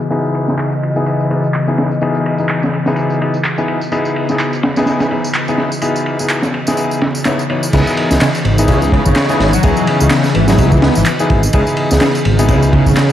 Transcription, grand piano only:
0.10 0.45 B3 medium
0.10 0.45 D#4 medium
0.10 0.45 E4 medium
0.10 0.45 G#4 loud
0.48 0.68 B3 medium
0.48 0.68 D#4 medium
0.48 0.68 E4 medium
0.48 0.68 G#4 medium
0.96 1.28 B3 medium
0.96 1.28 D#4 medium
0.96 1.28 E4 medium
0.96 1.28 G#4 loud
1.30 1.44 B3 medium
1.30 1.44 D#4 medium
1.30 1.44 E4 medium
1.30 1.44 G#4 medium
1.68 1.87 B3 medium
1.68 1.87 D#4 medium
1.68 1.87 E4 medium
1.68 1.87 G#4 medium
2.01 2.36 B3 medium
2.01 2.36 D#4 medium
2.01 2.36 E4 medium
2.01 2.36 G#4 loud
2.39 2.59 B3 medium
2.39 2.59 D#4 medium
2.39 2.59 E4 medium
2.39 2.59 G#4 medium
2.87 3.18 B3 medium
2.87 3.18 D#4 medium
2.87 3.18 E4 medium
2.87 3.18 G#4 loud
3.21 3.35 B3 medium
3.21 3.35 D#4 medium
3.21 3.35 E4 medium
3.21 3.35 G#4 medium
3.58 3.77 B3 medium
3.58 3.77 D#4 medium
3.58 3.77 E4 medium
3.58 3.77 G#4 loud
3.92 4.26 B3 medium
3.92 4.26 D#4 medium
3.92 4.26 E4 medium
3.92 4.26 G#4 loud
4.30 4.49 B3 medium
4.30 4.49 D#4 medium
4.30 4.49 E4 medium
4.30 4.49 G#4 medium
4.77 5.09 B3 medium
4.77 5.09 D#4 medium
4.77 5.09 E4 medium
4.77 5.09 G#4 loud
5.11 5.25 B3 medium
5.11 5.25 D#4 medium
5.11 5.25 E4 medium
5.11 5.25 G#4 medium
5.48 5.68 B3 medium
5.48 5.68 D#4 medium
5.48 5.68 E4 medium
5.48 5.68 G#4 medium
5.82 6.17 B3 medium
5.82 6.17 D#4 medium
5.82 6.17 E4 medium
5.82 6.17 G#4 loud
6.20 6.40 B3 medium
6.20 6.40 D#4 medium
6.20 6.40 E4 medium
6.20 6.40 G#4 medium
6.67 6.99 B3 medium
6.67 6.99 D#4 medium
6.67 6.99 E4 medium
6.67 6.99 G#4 loud
7.26 7.40 B3 medium
7.26 7.40 D#4 medium
7.26 7.40 E4 medium
7.26 7.40 C#5 loud
7.50 7.64 B3 medium
7.50 7.64 D#4 medium
7.50 7.64 E4 medium
7.50 7.64 C#5 medium
7.74 8.08 B3 loud
7.74 8.08 D#4 medium
7.74 8.08 E4 medium
7.74 8.08 G#4 loud
8.11 8.30 B3 medium
8.11 8.30 D#4 medium
8.11 8.30 E4 medium
8.11 8.30 G#4 medium
8.59 8.90 B3 loud
8.59 8.90 D#4 medium
8.59 8.90 E4 medium
8.59 8.90 G#4 loud
8.92 9.06 B3 medium
8.92 9.06 D#4 medium
8.92 9.07 E4 medium
8.92 9.06 G#4 medium
9.30 9.49 B3 loud
9.30 9.49 D#4 medium
9.30 9.49 E4 medium
9.30 9.49 G#4 loud
9.63 9.98 B3 loud
9.63 9.98 D#4 medium
9.63 9.98 E4 medium
9.63 9.98 G#4 loud
10.01 10.20 B3 medium
10.01 10.20 D#4 medium
10.01 10.20 E4 medium
10.01 10.21 G#4 medium
10.49 10.80 B3 loud
10.49 10.80 D#4 medium
10.49 10.80 E4 medium
10.49 10.80 G#4 loud
10.82 10.97 B3 medium
10.82 10.97 D#4 medium
10.82 10.97 E4 medium
10.82 10.97 G#4 medium
11.20 11.39 B3 medium
11.20 11.39 D#4 medium
11.20 11.39 E4 medium
11.20 11.39 G#4 loud
11.54 11.88 B3 loud
11.54 11.88 D#4 medium
11.54 11.88 E4 medium
11.54 11.88 G#4 loud
11.91 12.11 B3 medium
11.91 12.11 D#4 medium
11.91 12.11 E4 medium
11.91 12.11 G#4 medium
12.39 12.71 B3 loud
12.39 12.71 D#4 medium
12.39 12.70 E4 medium
12.39 12.71 G#4 loud
12.73 12.87 B3 medium
12.73 12.87 D#4 medium
12.73 12.87 E4 medium
12.73 12.87 G#4 medium

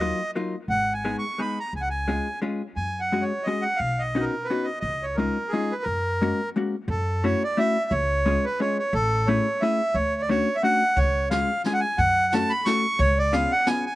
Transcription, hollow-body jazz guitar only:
0.01 0.20 F#3 medium
0.01 0.20 A#3 soft
0.01 0.20 D#4 soft
0.01 0.20 F4 soft
0.35 0.54 F#3 soft
0.35 0.54 A#3 medium
0.35 0.54 D#4 soft
0.35 0.55 F4 medium
1.05 1.23 G#3 soft
1.05 1.23 B3 soft
1.05 1.23 D#4 soft
1.05 1.24 G#4 medium
1.38 1.57 G#3 soft
1.38 1.57 B3 soft
1.38 1.58 D#4 soft
1.38 1.58 G#4 soft
2.08 2.27 G#3 soft
2.08 2.27 C#4 soft
2.08 2.27 F4 soft
2.08 2.27 G#4 soft
2.42 2.61 G#3 medium
2.42 2.61 C#4 soft
2.42 2.62 F4 medium
2.42 2.62 G#4 soft
3.12 3.31 G#3 soft
3.12 3.31 C#4 soft
3.12 3.31 F#4 soft
3.12 3.31 G#4 soft
3.47 3.65 G#3 soft
3.47 3.65 C#4 soft
3.47 3.66 F#4 soft
3.47 3.66 G#4 medium
4.15 4.34 B3 soft
4.15 4.34 C#4 soft
4.15 4.34 D#4 medium
4.15 4.35 F#4 medium
4.50 4.68 B3 soft
4.50 4.69 C#4 soft
4.50 4.69 D#4 soft
4.50 4.69 F#4 medium
5.18 5.36 G#3 medium
5.18 5.37 C#4 soft
5.18 5.37 D#4 soft
5.18 5.37 F4 medium
5.53 5.71 G#3 soft
5.53 5.71 C#4 soft
5.53 5.71 D#4 medium
5.53 5.72 F4 medium
6.21 6.40 G#3 medium
6.21 6.40 A#3 soft
6.21 6.40 C#4 medium
6.21 6.40 F#4 medium
6.56 6.74 G#3 medium
6.56 6.75 A#3 medium
6.56 6.75 C#4 medium
6.56 6.75 F#4 medium
7.24 7.42 A3 medium
7.24 7.42 C#4 soft
7.24 7.43 E4 soft
7.24 7.43 F#4 medium
7.57 7.76 A3 medium
7.57 7.76 C#4 soft
7.57 7.76 E4 medium
7.57 7.77 F#4 medium
8.26 8.44 G#3 medium
8.26 8.44 C#4 medium
8.26 8.45 F4 medium
8.26 8.45 G#4 medium
8.60 8.78 G#3 medium
8.60 8.78 C#4 medium
8.60 8.78 F4 soft
8.60 8.79 G#4 medium
9.28 9.46 A3 medium
9.28 9.46 C#4 medium
9.28 9.46 E4 medium
9.28 9.46 G#4 medium
9.62 9.80 A3 medium
9.62 9.80 C#4 soft
9.62 9.80 E4 medium
9.62 9.80 G#4 medium
10.29 10.47 A3 medium
10.29 10.48 C#4 medium
10.29 10.48 D4 soft
10.29 10.48 F#4 medium
10.63 10.82 A3 medium
10.63 10.81 C#4 soft
10.63 10.82 D4 soft
10.63 10.82 F#4 medium
11.31 11.50 G#3 medium
11.31 11.50 C#4 soft
11.31 11.50 F4 medium
11.31 11.50 G#4 medium
11.65 11.84 G#3 soft
11.65 11.84 C#4 soft
11.65 11.84 F4 soft
11.65 11.84 G#4 medium
12.34 12.51 A3 medium
12.34 12.52 C#4 medium
12.34 12.52 F#4 medium
12.34 12.52 A4 medium
12.66 12.85 A3 medium
12.66 12.85 C#4 soft
12.66 12.85 F#4 medium
12.66 12.85 A4 medium
13.33 13.51 B3 medium
13.33 13.52 C#4 medium
13.33 13.52 F4 medium
13.33 13.52 G#4 medium
13.67 13.85 B3 medium
13.67 13.86 C#4 medium
13.67 13.86 F4 soft
13.67 13.86 G#4 medium

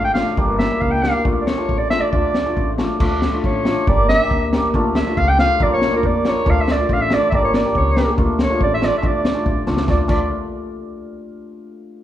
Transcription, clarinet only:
0.04 0.14 G5 loud
0.14 0.35 F5 loud
0.59 0.82 E5 medium
0.81 0.93 F5 medium
0.91 1.04 G5 loud
1.03 1.25 F5 loud
1.41 1.49 D5 medium
1.47 1.80 C#5 medium
1.78 1.90 D5 medium
1.90 2.02 E5 loud
2.01 2.11 D5 medium
2.12 2.74 D5 loud
3.45 3.90 C#5 medium
3.88 4.08 D5 loud
4.09 4.49 E5 loud
4.96 5.19 E5 loud
5.17 5.30 F5 loud
5.28 5.39 G5 loud
5.40 5.64 F5 loud
5.63 5.72 D5 medium
5.73 5.92 C#5 medium
5.96 6.07 A#4 medium
6.06 6.31 D5 medium
6.29 6.52 C#5 loud
6.50 6.62 F5 loud
6.61 6.73 E5 loud
6.71 6.94 D5 medium
6.93 7.03 F5 medium
7.01 7.15 E5 loud
7.14 7.30 D5 loud
7.30 7.36 E5 medium
7.35 7.44 D5 loud
7.44 7.57 C#5 medium
7.55 7.76 D5 medium
7.77 8.16 C#5 medium
8.41 8.60 C#5 medium
8.63 8.72 D5 loud
8.74 8.86 E5 loud
8.85 8.97 D5 loud
8.98 9.08 E5 medium
9.06 9.68 D5 medium
9.90 10.01 D5 medium
10.09 10.29 D5 medium

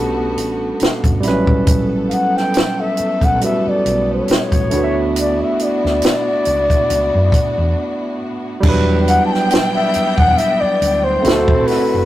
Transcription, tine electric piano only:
0.00 1.18 A3 medium
0.00 1.20 C#4 medium
0.00 1.20 D4 medium
0.00 1.21 F#4 medium
0.00 1.22 B4 medium
1.20 3.36 G3 medium
1.20 1.31 C4 medium
1.20 3.37 E4 medium
1.26 3.39 F#3 medium
1.26 3.40 C#4 medium
1.26 3.39 B4 medium
3.40 4.72 C#3 soft
3.40 4.71 G3 medium
3.40 4.72 E4 soft
3.40 4.73 F#4 soft
3.44 4.73 B4 soft
4.70 8.15 A3 medium
4.70 8.16 D4 medium
4.70 8.16 E4 medium
4.75 8.17 F#4 medium
4.75 4.82 B4 medium
4.84 8.22 E5 medium
8.60 11.19 G3 medium
8.60 11.20 D4 medium
8.65 11.22 F#3 medium
8.65 11.21 E4 medium
8.69 11.23 B4 loud
11.22 12.05 A3 medium
11.22 12.05 C4 medium
11.22 12.05 E4 medium
11.22 12.05 F#4 medium
11.22 11.31 A4 medium
11.32 12.05 A4 medium

